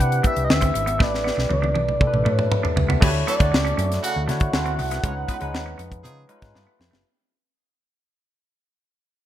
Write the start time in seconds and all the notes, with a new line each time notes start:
0.00 C3 C4 D4 E4 G4 B4 F#5, closed hi-hat
0.12 closed hi-hat
0.23 A3 E5, kick, closed hi-hat
0.36 C2, closed hi-hat
0.45 D#5
0.50 D2 E5, snare
0.61 C4, kick, closed hi-hat
0.74 G#1, muted clean electric guitar stroke, closed hi-hat
0.86 B3, closed hi-hat
0.99 A1 A3 D4 E4 G4 B4 D5, kick, snare
1.14 snare
1.24 B3, snare
1.37 B1, muted clean electric guitar stroke, snare
1.49 C#2 D5, muted clean electric guitar stroke, high tom
1.62 D4, high tom
1.75 B1 D4, high tom
1.89 mid tom
2.00 A3 D4 E4 G4 A4, kick, mid tom
2.07 B4
2.13 A1, mid tom
2.25 A2 A3, mid tom
2.32 C#5
2.39 mid tom
2.52 mid tom
2.63 D4, floor tom
2.76 C#2, muted clean electric guitar stroke, floor tom
2.89 B3, floor tom
3.00 D2 A3 B3 D4 E4 F#4 G4 B4 C#5, kick, crash
3.27 F#3 B3 E4 A4 D5, closed hi-hat
3.39 D2 A3 D4 E4 F#4 D5, muted clean electric guitar stroke, kick, closed hi-hat
3.52 C#2, muted clean electric guitar stroke, snare
3.65 C#4, closed hi-hat
3.77 F#2 C#4, closed hi-hat
3.92 snare, closed hi-hat
4.02 C#3 A3 F#4 F#5, closed hi-hat
4.16 D2
4.27 D3 A3 D4 E4 F#4 C#5 F#5, snare, closed hi-hat
4.40 kick, closed hi-hat
4.53 D2 A3 D4 E4 F#4 C5, snare
4.66 C4, closed hi-hat
4.78 C2, muted clean electric guitar stroke, open hi-hat
4.91 B3, snare, closed hi-hat
5.03 C#2 G#3 C#4 D#4 F4 B4 C#5, kick, closed hi-hat
5.28 G#3 B3 F4 B4, kick, closed hi-hat
5.40 C#2 F3 G#3 C#4 D#4 B4, muted clean electric guitar stroke, closed hi-hat
5.54 D#2, muted clean electric guitar stroke, snare
5.66 C#4
5.78 F2 C#4, closed hi-hat
5.92 kick, closed hi-hat
6.04 C#3 F3 D#4 G#4, closed hi-hat
6.29 G#3 C#4 D#4 F4 B4, closed hi-hat
6.42 G#2, kick, snare, closed hi-hat
6.54 G2 A3 D4 F4 G4 B4, snare
6.67 B3
6.79 F2, muted clean electric guitar stroke, snare
6.91 A3, snare